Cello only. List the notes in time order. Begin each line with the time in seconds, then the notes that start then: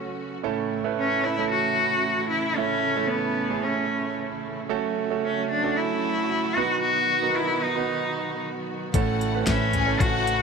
1.00 C#4
1.24 E4
1.51 F#4
2.29 E4
2.56 C#4
3.08 B3
3.63 C#4
5.25 C#4
5.50 D4
5.77 E4
6.55 F#4
6.81 F#4
7.36 E4
7.63 D#4
9.48 C#4
10.01 F#4